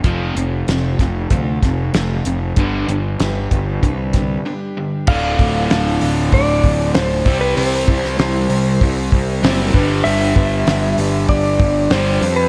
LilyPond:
<<
  \new Staff \with { instrumentName = "Electric slide guitar" } { \time 4/4 \key g \mixolydian \tempo 4 = 96 r1 | r1 | f''2 d''4 c''8. b'16 | c''4 c''2~ c''8 r8 |
e''2 d''4 c''8. b'16 | }
  \new Staff \with { instrumentName = "Reed electric piano" } { \time 4/4 \key g \mixolydian r1 | r1 | <f' a' d''>8 <f' a' d''>4. r4. <e' g' c''>8~ | <e' g' c''>8 <e' g' c''>4. r4. <d' g' b'>8~ |
<d' g' b'>8 <d' g' b'>4. r4. <d' g' b'>8 | }
  \new Staff \with { instrumentName = "Steel-string acoustic guitar" } { \time 4/4 \key g \mixolydian <f a c' f' a'>4 <f a c' f' a'>8 <c' f' a'>8 <a c' f' a'>8 <c' f' a'>8 <f a c' f' a'>4 | <g d' g' b'>4 <g d' g' b'>8 <d' g' b'>8 <g d' g' b'>8 <d' g' b'>8 <g d' g' b'>4 | <d a d' f' a'>4 <d a d' f' a'>8 <d' f' a'>8 <a d' f' a'>4 <d a d' f' a'>8 <g c' e' c''>8 | <c e g c' e' c''>4 <c e g c' e' c''>8 <g c' e' c''>8 <g c' e' c''>4 <c e g c' e' c''>8 <d' g' b'>8 |
<g d' g' b'>4 <g d' g' b'>8 <d' g' b'>8 <g d' g' b'>4 <g d' g'>8 <d' g' b'>8 | }
  \new Staff \with { instrumentName = "Overdriven electric guitar" } { \clef bass \time 4/4 \key g \mixolydian <f, c f>8 <f, c>8 <f, c>8 <f, c>8 <f, c>8 <f, c>8 <f, c>8 <f, c>8 | <g, d g>8 <g, d>8 <g, d>8 <g, d>8 <g, d>8 <g, d>8 <g, d>8 <g, d>8 | <d, a, d>2.~ <d, a, d>8 <c g c'>8~ | <c g c'>2. <c g c'>8 <g, d g>8~ |
<g, d g>2. <g, d g>8 r8 | }
  \new Staff \with { instrumentName = "Picked electric bass" } { \clef bass \time 4/4 \key g \mixolydian f,,8 f,,8 f,,8 f,,8 d,8 f,,8 f,,8 f,,8 | g,,8 g,,8 g,,8 g,,8 c,4 r4 | d,,8 d,,8 d,,8 d,,8 d,,8 d,,8 d,,8 c,8 | c,8 c,8 c,8 c,8 c,8 c,8 fis,,8 g,,8 |
g,,8 g,,8 g,,8 g,,8 g,,8 g,,8 g,,8 f,8 | }
  \new DrumStaff \with { instrumentName = "Drums" } \drummode { \time 4/4 <hh bd>8 hh8 <hh sn>8 <hh bd sn>8 <hh bd>8 <hh bd sn>8 <hh sn>8 hh8 | <hh bd>8 hh8 <hh sn>8 <hh bd>8 <hh bd>8 <hh bd sn>8 r4 | <cymc bd>8 <hho bd>8 <hho sn>8 hho8 <hho bd>8 <hho bd>8 <hho sn>8 <hho bd>8 | hho8 <hho bd>16 sn16 <hho sn>8 hho8 <hho bd>8 <hho bd>8 <hho sn>8 bd8 |
hho8 <hho bd>8 <hho sn>8 hho8 <hho bd>8 <hho bd>8 <hho sn>8 hho8 | }
>>